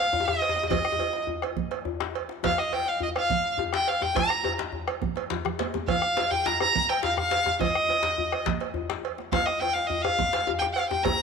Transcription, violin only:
Already playing: F5
0.25 D#5
0.69 D#5
2.45 F5
2.59 D#5
2.73 G5
2.88 F5
3.03 D#5
3.17 F5
3.75 G5
3.88 F5
4.02 G5
4.16 A#5
5.88 F5
6.31 G5
6.46 A#5
6.61 A#5
6.89 G5
7.04 F5
7.19 F5
7.61 D#5
9.33 F5
9.46 D#5
9.60 G5
9.74 F5
9.87 D#5
10.02 F5
10.59 G5
10.73 F5
10.89 G5
11.04 A#5

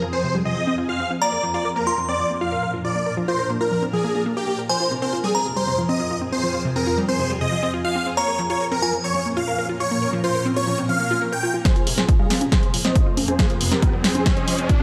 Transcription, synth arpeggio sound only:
0.02 F3
0.13 C4
0.24 C3
0.35 G3
0.45 C3
0.56 F3
0.67 C4
0.78 F4
0.89 F4
1.00 C4
1.11 C4
1.22 A#3
1.32 A#4
1.43 F3
1.54 F4
1.65 A#4
1.76 A#3
1.87 F4
1.98 F3
2.08 C4
2.19 F3
2.30 A#3
2.41 F4
2.52 A#4
2.63 A#4
2.74 F4
2.85 F4
2.95 A#3
3.06 A#4
3.17 F3
3.28 F4
3.39 A#4
3.50 A#3
3.61 F4
3.72 F3
3.82 C4
3.93 F3
4.04 A#3
4.15 A#3
4.26 A#3
4.37 A#3
4.48 A#3
4.59 A#4
4.69 F3
4.80 F4
4.91 C3
5.02 C4
5.13 F4
5.24 G3
5.35 C4
5.46 C3
5.56 G3
5.67 C3
5.78 F3
5.89 C4
6.00 F4
6.11 F4
6.22 C4
6.32 C4
6.43 F3
6.54 F4
6.65 C3
6.76 C4
6.87 F4
6.98 G3
7.09 C4
7.19 C3
7.30 G3
7.41 C3
7.52 F3
7.63 C4
7.74 F4
7.85 F4
7.95 C4
8.06 C4
8.17 A#3
8.28 A#4
8.39 F3
8.50 F4
8.61 A#4
8.72 C4
8.82 F4
8.93 F3
9.04 C4
9.15 F3
9.26 A#3
9.37 F4
9.48 A#4
9.59 A#4
9.69 F4
9.80 F4
9.91 A#3
10.02 A#4
10.13 F3
10.24 F4
10.35 A#4
10.46 C4
10.56 F4
10.67 F3
10.78 C4
10.89 F3
11.00 A#3
11.11 F4
11.22 A#4
11.32 A#4
11.43 F4
11.54 F4
11.65 F3
11.76 F4
11.87 C3
11.98 C4
12.09 F4
12.19 G3
12.30 C4
12.41 C3
12.52 G3
12.63 C3
12.74 F3
12.85 C4
12.95 F4
13.06 F4
13.17 C4
13.28 C4
13.39 F3
13.50 F4
13.61 C3
13.72 C4
13.82 F4
13.93 G3
14.04 C4
14.15 C3
14.26 G3
14.37 C3
14.48 F3
14.59 C4
14.69 F4

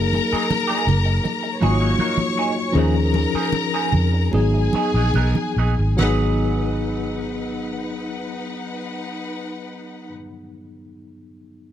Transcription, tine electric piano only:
Already playing: F#3 A#3 D#4 G#4
1.60 F#3 A#3 D#4 F4
1.68 F#4
2.72 F3 C#4 D#4 G#4
4.31 F#3 B3 D#4 G#4
5.97 F#3 B3 D#4
6.03 G#4

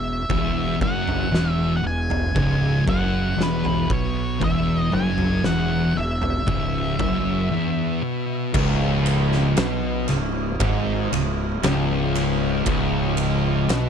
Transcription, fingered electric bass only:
Already playing: E1
0.30 E1
0.81 F#1
1.31 E1
1.83 E1
2.36 C#1
2.88 F#1
3.38 E1
3.90 B1
4.41 E1
4.93 F#1
5.45 E1
5.97 E1
6.47 C#1
6.99 F#1
8.54 C#1
9.58 B1
10.10 C#1
10.60 G#1
11.11 C#1
11.63 C#1
12.66 C#1
13.68 B1

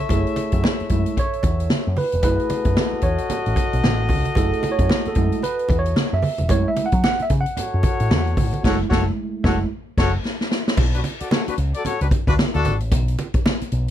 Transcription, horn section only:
Already playing: A4 C#5 E5
2.23 F#4 A4 D#5
7.58 F#4 A4 C#5
8.64 F#4 A4 C#5
8.90 F#4 A4 C#5
9.44 F#4 A4 C#5
9.98 F#4 A4 C#5
10.94 D4 F#4 B4
11.21 F#4 A4 D5
11.31 F#4 A4 C#5
11.48 D4 F#4 B4
11.75 F#4 A4 D5
11.86 F#4 A4 C#5
12.02 D4 F#4 B4
12.28 D4 F#4 B4
12.55 D4 F#4 A4

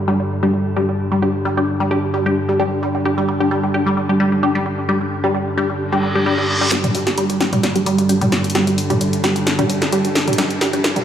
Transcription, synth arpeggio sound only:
0.08 G3
0.20 G3
0.43 G3
0.54 G3
0.77 G3
0.89 G3
1.12 G3
1.22 G3
1.45 G3
1.57 G3
1.80 G3
1.91 G3
2.14 G3
2.26 G3
2.49 G3
2.60 G3
2.83 G3
2.95 G3
3.18 G3
3.28 G3
3.51 G3
3.63 G3
3.86 G3
3.97 G3
4.20 G3
4.32 G3
4.55 G3
4.66 G3
4.89 G3
5.01 G3
5.24 G3
5.34 G3
5.57 G3
5.70 G3
5.92 G3
6.03 G3
6.26 G3
6.38 G3
6.61 G3
6.84 G3
6.95 G3
7.18 G3
7.30 G3
7.53 G3
7.64 G3
7.86 G3
7.99 G3
8.21 G3
8.32 G3
8.55 G3
8.67 G3
8.90 G3
9.01 G3
9.24 G3
9.36 G3
9.59 G3
9.70 G3
9.92 G3
10.05 G3
10.27 G3
10.38 G3
10.61 G3
10.73 G3
10.96 G3

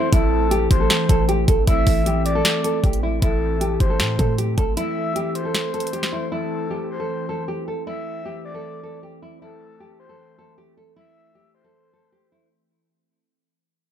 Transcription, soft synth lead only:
0.13 A4
0.71 C5
1.68 E5
2.26 D5
3.22 A4
3.80 C5
4.77 E5
5.35 C5
6.32 A4
6.90 C5
7.87 E5
8.45 D5
9.41 A4
10.00 C5
10.97 E5
11.55 C5

